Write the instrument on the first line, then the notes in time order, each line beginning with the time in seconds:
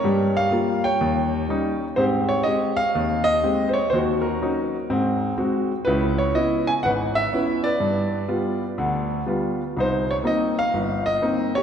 grand piano
Already playing: A#4 C#5
0.04 G2 G3
0.37 F5
0.51 G3 A#3 F4
0.84 C#5 G5
1.01 D#2
1.49 G3 C#4 D#4
1.96 G#2 C4 G4 C5
2.29 C#5
2.43 G#3 C4 G4 D#5
2.77 F5
2.95 D#2
3.24 D#5
3.43 G#3 C4 G4
3.69 C5
3.73 C#5
3.90 D#2 C5
3.95 F#4
4.21 A#4
4.27 F#4
4.42 F#3 C#4 D#4
4.90 G#2 C4
5.38 G#3 C4 F#4
5.85 C#2 C#3 E4 B4
6.18 C#5
6.34 B3 C#4 E4 D#5
6.67 G#5
6.83 G#1 B4 F#5
7.15 E5
7.33 B3 C#4 E4
7.64 B4 D5
7.80 G2
8.28 G3 B3 F4
8.78 D2 D3
9.26 G3 B3 F4
9.77 C2 D#4 C5
10.11 C#5
10.24 A#3 C4 D#4 D#5
10.59 F5
10.74 G1
11.06 D#5
11.22 A#3 C4 D#4
11.55 G4 C#5